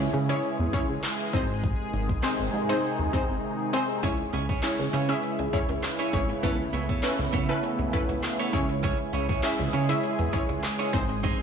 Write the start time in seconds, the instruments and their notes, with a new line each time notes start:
Already playing: analog synth pad C#3 E3 G#3 E4 G#4
0.13 analog synth bass C#3, closed hi-hat
0.29 synth pluck C#4 E4 G#4 C#5
0.43 closed hi-hat
0.59 analog synth bass E2
0.73 synth pluck C#4 E4 G#4 C#5, kick, closed hi-hat
0.90 analog synth bass C#2
1.03 snare, clap, closed hi-hat
1.33 analog synth bass G#1, analog synth pad C3 D#3 D#4, synth pluck C4 D#4 G#4 C5, kick, closed hi-hat
1.64 kick, closed hi-hat
1.93 analog synth bass G#1, closed hi-hat
2.09 kick
2.23 synth pluck C4 D#4 G#4 C5, snare, clap, closed hi-hat
2.40 analog synth bass G#1
2.54 analog synth bass G#2, closed hi-hat
2.69 synth pluck C4 D#4 G#4 C5
2.83 closed hi-hat
2.99 analog synth bass D#2
3.13 synth pluck C4 D#4 G#4 C5, kick, closed hi-hat
3.29 analog synth bass G#1
3.73 synth pluck C4 D#4 G#4 C5
4.03 analog synth bass C#2, analog synth pad C#3 E3 E4, synth pluck C#4 E4 G#4 C#5, clean electric guitar C#4 E4 G#4 C#5, kick, closed hi-hat
4.19 muted clean electric guitar stroke
4.33 analog synth bass C#2, clean electric guitar C#4 E4 G#4 C#5, closed hi-hat
4.49 clean electric guitar C#4 E4 G#4 C#5, kick
4.63 synth pluck C#4 E4 G#4 C#5, muted clean electric guitar stroke, snare, clap, closed hi-hat
4.79 analog synth bass C#2, muted clean electric guitar stroke
4.93 analog synth bass C#3, clean electric guitar C#4 E4 G#4 C#5, closed hi-hat
5.09 synth pluck C#4 E4 G#4 E5, muted clean electric guitar stroke
5.23 muted clean electric guitar stroke, closed hi-hat
5.39 analog synth bass C#2, muted clean electric guitar stroke
5.53 synth pluck C#4 E4 G#4 C#5, kick, closed hi-hat
5.69 analog synth bass C#2, muted clean electric guitar stroke
5.83 muted clean electric guitar stroke, snare, clap, closed hi-hat
5.99 clean electric guitar C#4 E4 G#4 C#5
6.13 analog synth bass G#1, synth pluck C#4 E4 G#4 C#5, muted clean electric guitar stroke, kick, closed hi-hat
6.29 muted clean electric guitar stroke
6.43 analog synth bass C#2, analog synth pad A3 B3, clean electric guitar B3 E4 A4 C#5, synth pluck C#4 E4 A4 B4, kick, closed hi-hat
6.59 muted clean electric guitar stroke
6.73 analog synth bass C#2, clean electric guitar B3 E4 A4 C#5, closed hi-hat
6.89 clean electric guitar B3 E4 A4 C#5, kick
7.03 synth pluck C#4 E4 A4 B4, snare, clap, closed hi-hat
7.19 analog synth bass C#2, muted clean electric guitar stroke
7.33 analog synth bass C#3, clean electric guitar B3 E4 A4 C#5, kick, closed hi-hat
7.49 synth pluck C#4 E4 A4 B4, muted clean electric guitar stroke
7.63 muted clean electric guitar stroke, closed hi-hat
7.79 analog synth bass C#2, muted clean electric guitar stroke
7.93 synth pluck C#4 E4 A4 B4, kick, closed hi-hat
8.09 analog synth bass C#2, muted clean electric guitar stroke
8.23 muted clean electric guitar stroke, snare, clap, closed hi-hat
8.39 clean electric guitar B3 E4 A4 C#5
8.53 analog synth bass C#2, analog synth pad G#3 G#4, synth pluck C#4 E4 G#4 C#5, muted clean electric guitar stroke, kick, closed hi-hat
8.69 muted clean electric guitar stroke
8.83 clean electric guitar C#4 E4 G#4 C#5, kick, closed hi-hat
8.99 muted clean electric guitar stroke
9.13 analog synth bass C#2, clean electric guitar C#4 E4 G#4 C#5, closed hi-hat
9.29 clean electric guitar C#4 E4 G#4 C#5, kick
9.43 synth pluck C#4 E4 G#4 E5, muted clean electric guitar stroke, snare, clap, closed hi-hat
9.59 analog synth bass C#2, muted clean electric guitar stroke
9.73 analog synth bass C#3, clean electric guitar C#4 E4 G#4 C#5, closed hi-hat
9.89 synth pluck C#4 E4 G#4 E5
10.03 muted clean electric guitar stroke, closed hi-hat
10.19 analog synth bass E2, muted clean electric guitar stroke
10.33 synth pluck C#4 E4 G#4 C#5, kick, closed hi-hat
10.49 analog synth bass C#2, muted clean electric guitar stroke
10.63 muted clean electric guitar stroke, snare, clap, closed hi-hat
10.79 clean electric guitar C#4 E4 G#4 C#5
10.93 analog synth bass G#1, analog synth pad C3 D#3 D#4 G#4, synth pluck C4 D#4 G#4 C5, kick, closed hi-hat
11.09 muted clean electric guitar stroke
11.23 clean electric guitar C4 D#4 G#4 C5, kick, closed hi-hat